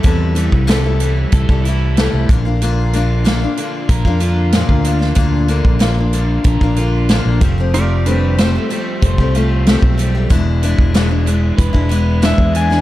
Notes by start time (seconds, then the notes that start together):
Already playing: G3 A3 E4 A4
0.03 E2 C3 E3 G3 E4 A4, kick, closed hi-hat
0.35 E3 G3 E4 A4, closed hi-hat
0.52 C2, kick
0.67 C3 E3 G3 A3 E4 A4, snare, closed hi-hat
0.83 G3 E4 A4
1.00 E3 G3 E4 A4, closed hi-hat
1.32 C2 A4, kick, closed hi-hat
1.49 C2 G3 E4 A4, kick
1.64 E3 G3 E4, closed hi-hat
1.68 E4 A4
1.97 C3 E3 G3 A3 E4 A4, snare, closed hi-hat
2.13 C2
2.29 A#1 A#2 D3 A#3 D4 F4, kick, closed hi-hat
2.45 A#3 D4 F4
2.62 A#2 D3 A#3 D4 F4, closed hi-hat
2.93 D3 A#3 D4 F4, closed hi-hat
3.24 A#2 D3 A#3 D4 F4, snare, closed hi-hat
3.42 A#3 D4 F4
3.57 D3 A#3 D4 F4, closed hi-hat
3.89 A#1 A#4, kick, closed hi-hat
4.05 F2 A#3 D4 F4, kick
4.20 D3 A#3 D4 F4, closed hi-hat
4.52 A#2 D3 A#3 D4 F4, snare, closed hi-hat
4.69 D2, kick
4.84 D3 A#3 D4 F4, closed hi-hat
4.99 A#3 D4 F4, snare
5.15 D2 A#2 D3 A#3 D4 F4, kick, closed hi-hat
5.48 D3 A#3 D4 F4, closed hi-hat
5.65 A#1, kick
5.79 A#2 D3 A#3 D4 F4, snare, closed hi-hat
5.98 A#3 D4 F4
6.13 D3 A#3 D4 F4, closed hi-hat
6.44 A#1 A#4, kick, closed hi-hat
6.61 A#1 A#3 D4 F4, kick
6.76 D3 A#3 D4 F4, closed hi-hat
7.09 A#2 D3 A#3 D4 F4, snare, closed hi-hat
7.25 A#1
7.41 F1 F3 A3 C4 G4, kick, closed hi-hat
7.58 A3 C4 G4
7.74 F3 A3 C4 F4 G4 D5, closed hi-hat
8.06 F3 G3 A3 C4 D4 G4 B4, closed hi-hat
8.38 F3 A3 C4 G4 C5, snare, closed hi-hat
8.55 A3 C4 G4
8.70 F3 G3 A3 C4 G4, closed hi-hat
9.01 F1 C5, kick, closed hi-hat
9.18 C2 A3 C4 G4, kick
9.35 F3 A3 C4 F4 G4, closed hi-hat
9.67 F3 A3 C4 G4, snare, closed hi-hat
9.82 B1, kick
9.98 F3 G3 A3 C4 G4, closed hi-hat
10.15 A3 C4 G4
10.30 E1 E2 B2 E3 G#3 D4 E4, kick, closed hi-hat
10.63 E3 G#3 D4 E4, closed hi-hat
10.78 E1, kick
10.94 E2 B2 E3 G#3 D4 E4, snare, closed hi-hat
11.09 E3 G#3 D4 E4
11.26 E3 G#3 D4 E4, closed hi-hat
11.58 E1 B4, kick, closed hi-hat
11.73 E1 E3 G#3 D4 E4, kick
11.89 E3 G#3 B3 D4 E4, closed hi-hat
12.22 E2 B2 E3 G#3 D4 E4 E5, snare, closed hi-hat
12.38 E2, kick
12.55 E3 G#3 D4 E4 G#5, closed hi-hat
12.70 E3 G#3 D4 E4, snare